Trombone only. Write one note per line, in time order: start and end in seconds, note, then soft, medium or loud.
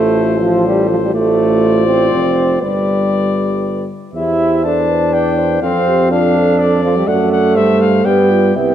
0.00 0.43 A3 medium
0.42 0.67 F3 medium
0.66 0.90 G3 medium
0.90 0.96 F3 medium
1.03 1.14 G3 medium
1.14 1.86 A3 medium
1.87 2.63 C4 medium
2.62 3.89 G3 medium
4.13 4.66 E4 medium
4.65 5.62 D4 medium
5.62 6.10 C4 medium
6.12 6.82 D4 medium
6.84 6.99 F3 medium
6.97 7.10 G3 medium
7.08 8.07 A3 medium
8.06 8.56 B3 medium
8.57 8.75 B3 medium